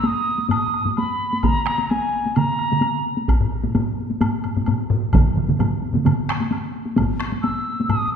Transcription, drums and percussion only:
0.04 taiko high medium
0.04 high woodblock soft
0.38 taiko high soft
0.49 taiko low-mid medium
0.49 taiko high medium
0.49 high woodblock soft
0.74 high woodblock soft
0.85 taiko low-mid medium
0.85 taiko high soft
0.97 taiko high medium
0.97 high woodblock soft
1.33 taiko high soft
1.43 taiko medium
1.43 taiko mid medium
1.43 taiko high medium
1.43 high woodblock soft
1.67 taiko rim medium
1.79 taiko high soft
1.89 taiko high medium
1.89 high woodblock soft
2.26 taiko high soft
2.36 taiko mid medium
2.36 taiko high medium
2.36 high woodblock soft
2.59 high woodblock soft
2.71 taiko mid medium
2.71 taiko high medium
2.81 taiko high medium
2.81 high woodblock soft
3.17 taiko high soft
3.28 taiko medium
3.28 taiko high medium
3.28 high woodblock soft
3.40 taiko low-mid medium
3.63 taiko low-mid medium
3.63 taiko high soft
3.75 taiko low-mid medium
3.75 taiko high medium
3.75 high woodblock soft
4.10 taiko high soft
4.21 taiko low-mid medium
4.21 taiko high medium
4.21 high woodblock soft
4.44 taiko low-mid medium
4.44 high woodblock soft
4.56 taiko low-mid medium
4.56 taiko high soft
4.66 taiko low-mid medium
4.66 taiko high medium
4.66 high woodblock soft
4.90 taiko low-mid loud
5.13 taiko loud
5.13 taiko low-mid medium
5.13 taiko mid medium
5.13 taiko high medium
5.13 high woodblock soft
5.36 taiko low-mid medium
5.36 taiko mid medium
5.48 taiko low-mid medium
5.48 taiko mid medium
5.48 taiko high soft
5.59 taiko low-mid medium
5.59 taiko mid medium
5.59 taiko high medium
5.59 high woodblock soft
5.83 taiko high soft
5.94 taiko low-mid medium
5.94 taiko mid medium
5.94 taiko high medium
6.06 taiko low-mid medium
6.06 taiko mid medium
6.06 taiko high medium
6.06 high woodblock soft
6.29 taiko rim medium
6.29 high woodblock soft
6.40 taiko high medium
6.51 taiko high medium
6.51 high woodblock soft
6.85 taiko high soft
6.96 taiko medium
6.96 taiko low-mid medium
6.96 taiko high medium
6.96 high woodblock soft
7.21 taiko rim medium
7.32 taiko high medium
7.43 taiko high medium
7.43 high woodblock soft
7.80 taiko high medium
7.89 taiko low-mid medium
7.89 taiko high medium
7.89 high woodblock soft

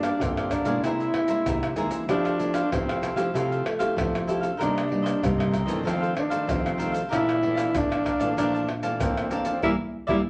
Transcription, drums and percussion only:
0.03 pandeiro medium
0.03 tamborim medium
0.03 maracas medium
0.21 pandeiro medium
0.21 tamborim medium
0.21 maracas medium
0.21 surdo loud
0.37 pandeiro soft
0.37 tamborim medium
0.37 maracas soft
0.51 pandeiro medium
0.51 tamborim medium
0.51 maracas medium
0.51 surdo medium
0.65 pandeiro medium
0.65 maracas medium
0.84 pandeiro medium
0.84 tamborim medium
0.84 maracas medium
0.84 surdo soft
1.00 pandeiro soft
1.00 maracas soft
1.14 pandeiro medium
1.14 tamborim medium
1.28 pandeiro medium
1.28 maracas medium
1.46 pandeiro medium
1.46 tamborim medium
1.46 maracas medium
1.46 surdo loud
1.63 pandeiro soft
1.63 tamborim medium
1.63 maracas soft
1.76 pandeiro medium
1.76 maracas medium
1.91 pandeiro medium
1.91 maracas medium
2.09 pandeiro medium
2.09 tamborim medium
2.09 maracas medium
2.09 surdo medium
2.25 pandeiro soft
2.25 tamborim medium
2.25 maracas soft
2.40 pandeiro medium
2.40 maracas medium
2.54 pandeiro medium
2.54 tamborim medium
2.54 maracas medium
2.72 pandeiro medium
2.72 tamborim medium
2.72 maracas medium
2.72 surdo loud
2.89 pandeiro soft
2.89 tamborim medium
2.89 maracas soft
3.03 pandeiro medium
3.03 tamborim medium
3.03 maracas medium
3.17 pandeiro medium
3.17 maracas medium
3.35 pandeiro medium
3.35 tamborim medium
3.35 maracas medium
3.35 surdo soft
3.52 pandeiro soft
3.52 maracas soft
3.66 pandeiro medium
3.66 tamborim medium
3.80 pandeiro medium
3.80 maracas medium
3.98 pandeiro medium
3.98 tamborim medium
3.98 maracas medium
3.98 surdo loud
4.15 pandeiro soft
4.15 tamborim medium
4.15 maracas soft
4.29 pandeiro medium
4.29 maracas medium
4.43 pandeiro medium
4.43 maracas medium
4.61 pandeiro medium
4.61 tamborim medium
4.61 maracas medium
4.61 surdo medium
4.78 pandeiro soft
4.78 tamborim medium
4.78 maracas soft
4.92 pandeiro medium
5.06 pandeiro medium
5.06 tamborim medium
5.06 maracas medium
5.24 pandeiro medium
5.24 tamborim medium
5.24 maracas medium
5.24 surdo loud
5.40 pandeiro soft
5.40 tamborim medium
5.40 maracas soft
5.54 pandeiro medium
5.54 tamborim medium
5.54 maracas medium
5.54 surdo medium
5.68 pandeiro medium
5.68 maracas medium
5.87 pandeiro medium
5.87 tamborim medium
5.87 maracas medium
5.87 surdo medium
6.03 pandeiro soft
6.03 maracas soft
6.17 pandeiro medium
6.17 tamborim medium
6.31 pandeiro medium
6.31 maracas medium
6.49 pandeiro medium
6.49 tamborim medium
6.49 maracas medium
6.49 surdo loud
6.66 pandeiro soft
6.66 tamborim medium
6.66 maracas soft
6.80 pandeiro medium
6.80 maracas medium
6.94 pandeiro medium
6.94 maracas medium
7.13 pandeiro medium
7.13 tamborim medium
7.13 maracas medium
7.13 surdo medium
7.29 pandeiro soft
7.29 tamborim medium
7.29 maracas soft
7.43 pandeiro medium
7.57 pandeiro medium
7.57 tamborim medium
7.57 maracas medium
7.75 pandeiro medium
7.75 tamborim medium
7.75 maracas medium
7.75 surdo loud
7.92 pandeiro soft
7.92 tamborim medium
7.92 maracas soft
8.06 pandeiro medium
8.06 tamborim medium
8.06 maracas medium
8.06 surdo medium
8.20 pandeiro medium
8.20 maracas medium
8.38 pandeiro medium
8.38 tamborim medium
8.38 maracas medium
8.38 surdo soft
8.55 pandeiro soft
8.55 maracas soft
8.69 pandeiro medium
8.69 tamborim medium
8.83 pandeiro medium
8.83 maracas medium
9.00 pandeiro medium
9.00 tamborim medium
9.00 maracas medium
9.00 surdo loud
9.17 pandeiro soft
9.17 tamborim medium
9.17 maracas soft
9.31 pandeiro medium
9.31 maracas medium
9.45 pandeiro medium
9.45 maracas medium
9.63 surdo medium
10.08 surdo loud

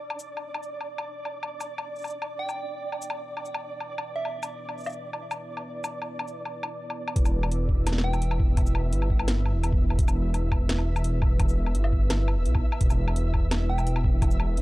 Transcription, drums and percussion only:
0.10 low woodblock medium
0.19 shaker medium
0.37 low woodblock soft
0.54 low woodblock medium
0.63 shaker soft
0.81 low woodblock soft
0.98 low woodblock medium
1.25 low woodblock soft
1.43 low woodblock medium
1.60 low woodblock soft
1.60 shaker medium
1.78 low woodblock medium
1.96 shaker soft
1.98 shaker soft
2.01 low woodblock soft
2.01 shaker soft
2.04 shaker soft
2.07 shaker soft
2.10 shaker soft
2.22 low woodblock medium
2.49 low woodblock soft
2.49 shaker soft
2.92 low woodblock soft
3.02 shaker medium
3.10 low woodblock medium
3.37 low woodblock soft
3.45 shaker soft
3.55 low woodblock medium
3.80 low woodblock soft
3.98 low woodblock medium
4.25 low woodblock soft
4.43 low woodblock medium
4.43 shaker medium
4.69 low woodblock soft
4.78 shaker soft
4.80 shaker soft
4.84 low woodblock medium
4.84 shaker soft
4.86 shaker soft
4.89 shaker soft
4.92 shaker soft
5.13 low woodblock medium
5.31 low woodblock medium
5.31 shaker soft
5.57 low woodblock medium
5.84 low woodblock medium
5.84 shaker medium
6.02 low woodblock medium
6.19 low woodblock medium
6.28 shaker soft
6.45 low woodblock medium
6.63 low woodblock medium
6.90 low woodblock medium
7.08 low woodblock medium
7.16 kick loud
7.16 closed hi-hat medium
7.25 low woodblock medium
7.25 shaker medium
7.43 low woodblock medium
7.52 closed hi-hat medium
7.69 kick medium
7.87 snare medium
7.87 closed hi-hat medium
7.87 low woodblock medium
7.93 snare medium
7.98 snare loud
8.13 low woodblock medium
8.13 shaker soft
8.22 closed hi-hat medium
8.31 low woodblock medium
8.40 kick loud
8.57 kick loud
8.57 closed hi-hat medium
8.57 low woodblock medium
8.67 shaker medium
8.75 low woodblock medium
8.93 closed hi-hat medium
9.02 low woodblock medium
9.10 kick medium
9.19 low woodblock medium
9.28 snare loud
9.28 closed hi-hat medium
9.46 low woodblock medium
9.64 closed hi-hat medium
9.64 low woodblock medium
9.73 kick loud
9.90 low woodblock medium
9.99 kick loud
9.99 closed hi-hat medium
10.08 low woodblock medium
10.08 shaker medium
10.34 closed hi-hat medium
10.34 low woodblock soft
10.52 kick medium
10.52 low woodblock medium
10.69 snare loud
10.69 closed hi-hat medium
10.78 low woodblock medium
10.96 low woodblock medium
10.96 shaker soft
11.04 closed hi-hat medium
11.22 kick loud
11.22 low woodblock medium
11.40 kick loud
11.40 closed hi-hat medium
11.40 low woodblock medium
11.49 shaker medium
11.66 low woodblock soft
11.75 closed hi-hat medium
11.84 low woodblock medium
11.93 kick medium
12.10 snare loud
12.10 closed hi-hat medium
12.10 low woodblock medium
12.28 low woodblock medium
12.45 closed hi-hat medium
12.55 kick loud
12.55 low woodblock soft
12.72 low woodblock medium
12.81 kick loud
12.81 closed hi-hat medium
12.90 low woodblock soft
12.90 shaker medium
13.08 low woodblock medium
13.16 closed hi-hat medium
13.34 kick medium
13.34 low woodblock medium
13.51 snare loud
13.51 closed hi-hat medium
13.51 low woodblock medium
13.78 low woodblock medium
13.78 shaker soft
13.87 closed hi-hat medium
13.96 low woodblock medium
14.04 kick loud
14.22 kick loud
14.22 closed hi-hat medium
14.22 low woodblock medium
14.31 shaker medium
14.40 low woodblock medium
14.57 closed hi-hat medium

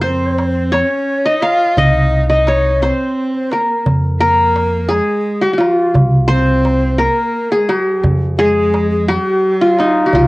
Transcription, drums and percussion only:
0.04 darbuka ka soft
0.38 darbuka tek medium
0.74 darbuka tek medium
1.25 darbuka ka soft
1.42 darbuka tek medium
1.77 darbuka dum medium
2.13 darbuka ka soft
2.47 darbuka tek medium
2.82 darbuka tek medium
3.34 darbuka ka soft
3.52 darbuka tek medium
3.86 darbuka dum medium
4.21 darbuka ka soft
4.56 darbuka tek medium
4.90 darbuka tek medium
5.43 darbuka ka soft
5.61 darbuka tek medium
5.95 darbuka dum medium
6.30 darbuka ka soft
6.65 darbuka tek medium
6.99 darbuka tek medium
7.52 darbuka ka soft
7.69 darbuka tek medium
8.04 darbuka dum medium
8.39 darbuka ka soft
8.74 darbuka tek medium
9.09 darbuka tek medium
9.61 darbuka ka soft
9.79 darbuka tek medium
10.13 darbuka dum medium

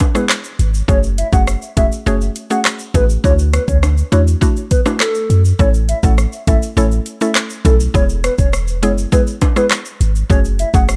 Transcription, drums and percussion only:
0.00 kick medium
0.00 closed hi-hat medium
0.00 high timbale medium
0.00 shaker soft
0.00 shaker medium
0.15 cross-stick medium
0.15 shaker medium
0.29 cross-stick loud
0.29 clap loud
0.29 shaker medium
0.44 shaker medium
0.59 closed hi-hat medium
0.59 shaker soft
0.59 shaker medium
0.74 shaker medium
0.89 kick loud
0.89 shaker medium
1.03 shaker medium
1.18 closed hi-hat medium
1.18 shaker medium
1.33 kick loud
1.33 shaker medium
1.47 cross-stick loud
1.47 shaker medium
1.62 shaker medium
1.77 kick medium
1.77 closed hi-hat medium
1.77 shaker medium
1.77 shaker soft
1.92 shaker medium
2.07 shaker medium
2.21 shaker medium
2.36 closed hi-hat medium
2.36 shaker medium
2.36 shaker soft
2.50 shaker medium
2.65 cross-stick loud
2.65 clap loud
2.65 shaker medium
2.79 shaker medium
2.94 kick medium
2.94 closed hi-hat medium
2.94 shaker medium
2.94 shaker soft
3.09 shaker medium
3.24 kick loud
3.24 shaker medium
3.39 shaker medium
3.53 cross-stick loud
3.53 closed hi-hat medium
3.53 shaker medium
3.68 kick medium
3.68 shaker medium
3.83 cross-stick medium
3.83 high timbale soft
3.83 shaker medium
3.97 shaker medium
4.12 closed hi-hat medium
4.12 shaker medium
4.27 shaker medium
4.42 kick medium
4.42 shaker medium
4.56 shaker medium
4.71 kick medium
4.71 closed hi-hat medium
4.71 shaker soft
4.71 shaker medium
4.86 cross-stick medium
4.86 high timbale medium
4.86 shaker medium
5.00 cross-stick loud
5.00 clap loud
5.00 shaker medium
5.14 shaker medium
5.30 closed hi-hat medium
5.30 shaker soft
5.30 shaker medium
5.45 shaker medium
5.59 kick loud
5.59 shaker medium
5.74 shaker medium
5.89 closed hi-hat medium
5.89 shaker medium
6.03 kick loud
6.03 shaker medium
6.18 cross-stick medium
6.18 shaker medium
6.33 shaker medium
6.47 kick medium
6.47 closed hi-hat medium
6.47 shaker medium
6.62 shaker medium
6.77 shaker medium
6.91 shaker medium
7.06 closed hi-hat medium
7.06 shaker medium
7.21 shaker medium
7.35 cross-stick loud
7.35 clap loud
7.35 shaker medium
7.50 shaker medium
7.65 kick medium
7.65 closed hi-hat medium
7.65 shaker soft
7.65 shaker medium
7.80 shaker medium
7.94 kick loud
7.94 shaker medium
8.09 shaker medium
8.24 cross-stick loud
8.24 closed hi-hat medium
8.24 shaker medium
8.38 kick medium
8.38 shaker medium
8.53 cross-stick loud
8.53 shaker medium
8.67 shaker medium
8.83 closed hi-hat medium
8.83 shaker medium
8.83 shaker soft
8.98 shaker medium
9.12 kick medium
9.12 shaker medium
9.27 shaker medium
9.41 kick medium
9.41 closed hi-hat medium
9.41 high timbale medium
9.41 shaker soft
9.41 shaker medium
9.56 cross-stick medium
9.56 shaker medium
9.71 cross-stick loud
9.71 clap loud
9.71 shaker medium
9.85 shaker medium
10.01 closed hi-hat medium
10.01 shaker medium
10.01 shaker soft
10.15 shaker medium
10.30 kick loud
10.30 shaker medium
10.45 shaker medium
10.59 closed hi-hat medium
10.59 shaker medium
10.74 kick loud
10.74 shaker medium
10.89 cross-stick loud
10.89 shaker medium

